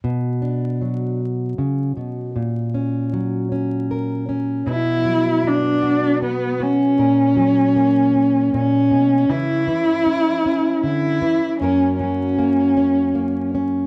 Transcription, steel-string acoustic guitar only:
\new Staff \with { instrumentName = "Steel-string acoustic guitar" } { \time 3/4 \key b \minor \tempo 4 = 78 << { r8 d'4 r4. | r8 cis'4 cis'8 ais'8 cis'8 | b4 b8 fis'8 b8 fis'8 | ais'4 ais8 cis'4. |
<e cis'>4 cis'8 cis'4. | <fis ais cis' ais'>4 ais8 cis'8 ais8 cis'8 | } \\ { b,4 fis4 cis8 b,8 | ais,4 fis2 | b,8 fis2~ fis8 | ais,8 fis4. ais,8 b,8 |
cis8 e4. d8 e8 | fis,8 fis2~ fis8 | } >> }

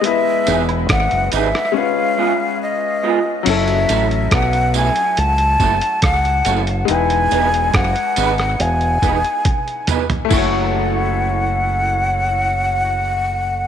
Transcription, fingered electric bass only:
\new Staff \with { instrumentName = "Fingered electric bass" } { \clef bass \time 4/4 \key fis \dorian \tempo 4 = 70 r8 e,,8 gis,,16 fis,,16 gis,,16 r2 r16 | fis,,8 a,,8 b,,8. r16 cis,8 fis,,16 r16 cis,8 fis,,8 | e,,8 e,,8 fis,,16 r16 gis,,8 e,,8 e,,16 r4 r16 | fis,,1 | }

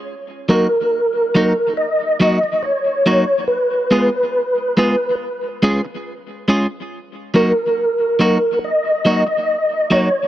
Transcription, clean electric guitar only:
\new Staff \with { instrumentName = "Clean electric guitar" } { \time 4/4 \key ees \minor \tempo 4 = 70 r8 <ges bes ees' ges'>8 r8 <ges bes ees' ges'>8 r8 <ges bes ees' ges'>8 r8 <ges bes ees' ges'>8 | r8 <aes ces' f' aes'>8 r8 <aes ces' f' aes'>8 r8 <aes des' f' aes'>8 r8 <aes des' f' aes'>8 | r8 <ges bes ees' ges'>8 r8 <ges bes ees' ges'>8 r8 <ges bes ees' ges'>8 r8 <ges bes ees' ges'>8 | }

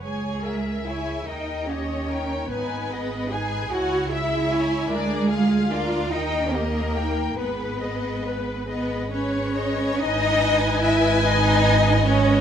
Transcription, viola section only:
\new Staff \with { instrumentName = "Viola section" } { \time 6/8 \key gis \minor \tempo 4. = 48 << { cis''8 gis'8 cis''8 ais'8 g'8 ais'8 | b'8 gis'8 b'8 cis''8 e''8 cis''8 | ais'8 gis'8 ais'8 ais'8 g'8 ais'8 | gis'8 b'8 gis'8 b'8 gis'8 b'8 |
dis''16 dis''16 dis''16 dis''16 dis''16 dis''16 dis''16 dis''16 dis''16 dis''16 dis''16 dis''16 | } \\ { gis'8 ais'8 gis'8 dis'8 g'8 dis'8 | dis'8 gis'8 dis'8 e'8 gis'8 e'8 | d'8 eis'8 d'8 dis'8 g'8 dis'8 | b'8 gis'8 b'8 gis'8 b'8 gis'8 |
b'2. | } >> }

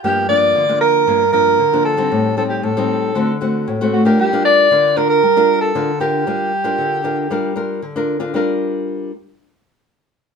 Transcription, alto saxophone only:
\new Staff \with { instrumentName = "Alto saxophone" } { \time 4/4 \key g \minor \tempo 4 = 116 g'8 d''4 bes'4 bes'4 a'8~ | a'8 a'16 g'16 a'4. r4 fis'16 g'16 | g'8 d''4 bes'16 bes'4 a'8. g'8~ | g'2. r4 |
r1 | }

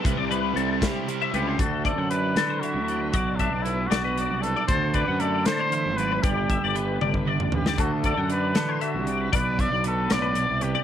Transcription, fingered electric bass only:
\new Staff \with { instrumentName = "Fingered electric bass" } { \clef bass \time 6/8 \key d \mixolydian \tempo 4. = 77 c,16 c,8. c,8 r4 des,8 | d,8. fis,8. d8. d,8. | b,,8. b,,8. b,,8. c,8 r16 | d,8. fis,8. d8. aes,,8. |
g,,8. g,,8. g,,8. a,,8 r16 | d,8. fis,8. d8. c,8. | b,,8. b,,8. b,,8. c,8 r16 | }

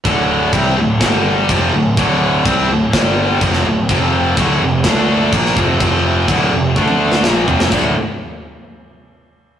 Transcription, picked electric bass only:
\new Staff \with { instrumentName = "Picked electric bass" } { \clef bass \time 4/4 \key d \minor \tempo 4 = 125 d,,4 c,8 d,,8 g,,4 f,,8 d,,8 | d,,4 c,8 d,,8 g,,4 f,,8 d,,8 | f,,4 d,,8 f,,8 d,4 bes,,8 f,,8 | f,,4 d,,8 f,,8 d,4 bes,,8 f,,8 |
d,,8 r2. r8 | }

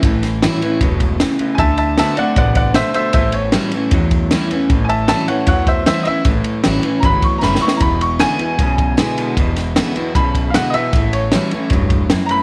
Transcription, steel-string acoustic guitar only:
\new Staff \with { instrumentName = "Steel-string acoustic guitar" } { \time 4/4 \key a \major \tempo 4 = 154 << { r4 <e g cis' e'>8 <cis' e'>8 r2 | r4 <d a c' fis'>8 <c' fis'>8 r2 | r4 <e g cis' e'>8 <cis' e'>8 r4 <e g cis' e'>8 <cis' e'>8 | r4 <e g cis' e'>8 <cis' e'>8 r4 <e g cis' e'>8 <cis' e'>8 |
r4 <e g cis' e'>8 <cis' e'>8 r4 <e g cis' e'>8 <cis' e'>8 | r4 <d gis b e'>8 <b e'>8 r4 <d gis b e'>4 | r4 <d gis b e'>8 <b e'>8 r4 <d gis b e'>8 <b e'>8 | r4 <e g cis' e'>8 <cis' e'>8 r2 | } \\ { a,2 b,4 cis4 | d2 c4 b,4 | a,2 e,2 | a,2 e,2 |
a,2 e,2 | e,2 b,2 | e,2 b,2 | a,2 g,4 fis,4 | } >> }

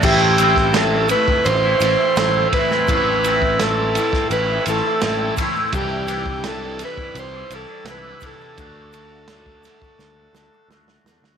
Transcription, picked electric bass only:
\new Staff \with { instrumentName = "Picked electric bass" } { \clef bass \time 4/4 \key a \dorian \tempo 4 = 84 a,,2 a,,8 a,,16 r16 a,,8 r8 | a,,2 a,,8 a,,16 r16 a,,8 r8 | c,2 c,8 c,16 r16 c,8 r8 | d,2 d,8 d,16 r16 d,8 e,16 d,16 | }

